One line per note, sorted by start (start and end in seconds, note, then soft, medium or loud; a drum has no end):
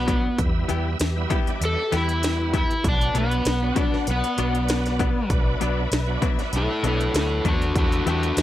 0.00 0.19 B1 medium
0.00 0.18 F#3 medium
0.00 0.18 B3 medium
0.00 0.39 B3 medium
0.00 0.19 D4 medium
0.00 0.37 F#4 medium
0.00 0.37 B4 medium
0.00 0.36 D5 medium
0.07 0.27 B2 medium
0.07 0.27 F#3 medium
0.07 0.28 B3 medium
0.07 0.28 D4 medium
0.07 kick medium
0.07 closed hi-hat medium
0.38 0.63 E2 loud
0.38 0.98 G3 medium
0.38 0.98 B3 medium
0.38 0.98 E4 medium
0.38 2.82 G4 medium
0.38 2.82 B4 medium
0.38 2.82 E5 medium
0.38 kick loud
0.38 closed hi-hat medium
0.68 0.94 E2 medium
0.68 0.88 E3 medium
0.68 0.89 B3 medium
0.68 0.89 E4 medium
0.68 0.89 G4 medium
0.68 closed hi-hat medium
1.00 1.24 E2 medium
1.00 snare loud
1.00 closed hi-hat medium
1.16 1.40 G3 medium
1.16 1.40 B3 medium
1.16 1.40 E4 loud
1.30 1.50 E3 medium
1.30 1.50 B3 medium
1.30 1.51 E4 medium
1.30 1.51 G4 loud
1.30 kick medium
1.30 closed hi-hat medium
1.47 1.83 G3 medium
1.47 1.83 B3 medium
1.47 1.83 D4 medium
1.47 muted fingered electric bass stroke soft
1.47 closed hi-hat soft
1.61 1.74 E2 medium
1.61 1.93 A4 loud
1.61 closed hi-hat medium
1.91 2.65 E2 medium
1.91 2.12 E3 medium
1.91 2.64 G3 medium
1.91 2.64 B3 medium
1.91 2.12 B3 medium
1.91 2.64 E4 medium
1.91 2.12 E4 medium
1.91 2.12 G4 medium
1.91 snare soft
1.91 closed hi-hat medium
1.96 2.54 E4 medium
2.09 closed hi-hat soft
2.23 snare loud
2.23 closed hi-hat medium
2.54 2.73 E3 medium
2.54 2.74 B3 medium
2.54 2.74 E4 medium
2.54 2.85 E4 medium
2.54 2.74 G4 medium
2.54 kick medium
2.54 closed hi-hat medium
2.71 closed hi-hat soft
2.83 3.09 B1 loud
2.83 3.43 F#3 medium
2.83 3.44 B3 medium
2.83 3.44 D4 medium
2.83 7.72 B4 medium
2.83 7.72 D5 medium
2.83 5.28 F#5 medium
2.83 kick loud
2.83 closed hi-hat medium
2.88 3.16 D4 medium
3.01 closed hi-hat soft
3.14 3.39 B1 medium
3.14 3.34 B2 medium
3.14 3.35 F#3 medium
3.14 3.35 B3 medium
3.14 3.80 B3 medium
3.14 3.35 D4 medium
3.14 closed hi-hat medium
3.31 closed hi-hat soft
3.45 3.70 B1 medium
3.45 snare loud
3.45 closed hi-hat medium
3.62 3.85 F#3 medium
3.62 3.86 B3 medium
3.62 3.86 D4 medium
3.76 3.96 B2 medium
3.76 3.96 F#3 medium
3.76 3.96 B3 medium
3.76 3.96 D4 medium
3.76 4.08 D4 medium
3.76 kick medium
3.76 closed hi-hat medium
3.91 4.27 F#3 medium
3.91 4.28 B3 medium
3.91 4.28 D4 medium
3.91 muted fingered electric bass stroke soft
3.91 snare soft
4.07 4.21 B1 medium
4.07 5.28 B3 medium
4.07 closed hi-hat medium
4.24 closed hi-hat soft
4.37 5.11 B1 medium
4.37 4.57 B2 medium
4.37 5.09 F#3 medium
4.37 4.58 F#3 medium
4.37 5.10 B3 medium
4.37 4.58 B3 medium
4.37 5.10 D4 medium
4.37 4.58 D4 medium
4.37 closed hi-hat medium
4.55 closed hi-hat soft
4.69 snare loud
4.69 closed hi-hat medium
4.86 snare soft
4.86 closed hi-hat soft
4.99 5.19 B2 medium
4.99 5.19 F#3 medium
4.99 5.19 B3 loud
4.99 5.20 D4 medium
4.99 kick medium
4.99 closed hi-hat medium
5.30 5.54 B1 loud
5.30 5.89 F#3 medium
5.30 5.90 B3 medium
5.30 5.90 D4 medium
5.30 7.73 E5 medium
5.30 kick loud
5.30 closed hi-hat medium
5.61 5.85 B1 medium
5.61 5.80 B2 medium
5.61 5.81 F#3 medium
5.61 5.81 B3 medium
5.61 5.81 D4 medium
5.61 closed hi-hat medium
5.91 6.16 B1 medium
5.91 snare loud
5.91 closed hi-hat medium
6.07 6.31 F#3 medium
6.07 6.31 B3 medium
6.07 6.31 D4 loud
6.22 6.41 B2 medium
6.22 6.42 F#3 medium
6.22 6.42 B3 loud
6.22 6.42 D4 loud
6.22 kick medium
6.22 closed hi-hat medium
6.38 6.74 F#3 medium
6.38 6.74 B3 medium
6.38 6.74 D4 medium
6.38 muted fingered electric bass stroke soft
6.38 snare soft
6.38 closed hi-hat soft
6.53 6.66 B1 medium
6.53 6.85 E4 medium
6.53 closed hi-hat medium
6.57 6.85 A4 medium
6.83 7.08 B1 medium
6.83 7.03 B2 medium
6.83 7.55 F#3 medium
6.83 7.03 F#3 medium
6.83 7.55 B3 medium
6.83 7.04 B3 medium
6.83 7.55 D4 medium
6.83 7.04 D4 medium
6.83 closed hi-hat medium
6.87 7.14 E4 medium
6.87 7.15 A4 medium
7.01 closed hi-hat soft
7.14 7.42 D2 medium
7.14 snare loud
7.14 closed hi-hat medium
7.18 7.45 E4 medium
7.18 7.46 A4 medium
7.45 7.72 E2 medium
7.45 7.64 B2 medium
7.45 7.65 F#3 medium
7.45 7.65 B3 medium
7.45 7.65 D4 medium
7.45 7.75 D4 medium
7.45 kick medium
7.45 closed hi-hat medium
7.49 7.77 F#4 medium
7.62 closed hi-hat soft
7.75 8.00 E2 loud
7.75 8.35 G3 medium
7.75 8.35 B3 medium
7.75 8.05 D4 medium
7.75 8.35 E4 medium
7.75 8.07 F#4 medium
7.75 8.42 B4 medium
7.75 8.42 E5 medium
7.75 kick loud
7.75 closed hi-hat medium
7.92 closed hi-hat soft
8.06 8.31 E2 medium
8.06 8.26 E3 medium
8.06 8.26 B3 medium
8.06 8.36 D4 medium
8.06 8.26 E4 medium
8.06 8.38 F#4 medium
8.06 8.27 G4 medium
8.06 closed hi-hat medium
8.23 closed hi-hat soft
8.37 8.42 E2 medium
8.37 snare loud
8.37 closed hi-hat medium